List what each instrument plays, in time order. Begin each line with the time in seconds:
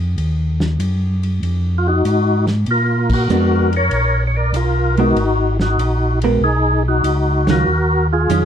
Already playing: tonewheel organ F2
0.18 tonewheel organ D#2, ride
0.60 snare
0.79 tonewheel organ F#2, hi-hat pedal, ride
1.23 ride
1.42 tonewheel organ F2, ride
1.78 tonewheel organ F4
1.88 tonewheel organ D#4 F#4
2.05 tonewheel organ G#2, hi-hat pedal, ride
2.47 snare, ride
2.66 tonewheel organ A#2, ride
2.71 tonewheel organ F4 A#4
3.10 tonewheel organ F#4, kick, crash
3.14 tonewheel organ A#4
3.29 tonewheel organ F2, hollow-body jazz guitar G#3 B3 D4, hi-hat pedal
3.73 tonewheel organ A#4 C#5, ride
3.91 tonewheel organ A#1, ride
4.27 tonewheel organ C#5
4.36 tonewheel organ A#4 D5
4.53 tonewheel organ B1 F4 A#4, hi-hat pedal, ride
4.97 hollow-body jazz guitar G#3 B3 F#4 A#4, tonewheel organ D#4 F#4, ride
5.16 tonewheel organ G#1, ride
5.60 tonewheel organ D#4 F#4, snare
5.78 tonewheel organ A#1, hi-hat pedal, ride
6.22 hollow-body jazz guitar G#3 B3 F#4 A#4, ride
6.41 tonewheel organ B1 D#4 G#4
6.88 tonewheel organ D#4 F#4
7.04 tonewheel organ C#2, hi-hat pedal, ride
7.47 hollow-body jazz guitar D#3 F#3 C#4 F4, tonewheel organ F#4, snare, ride
7.51 tonewheel organ A#4
7.67 tonewheel organ D#2
8.13 tonewheel organ F4 G#4
8.29 tonewheel organ F2, hollow-body jazz guitar D#3 F#3 C#4 F4, hi-hat pedal, ride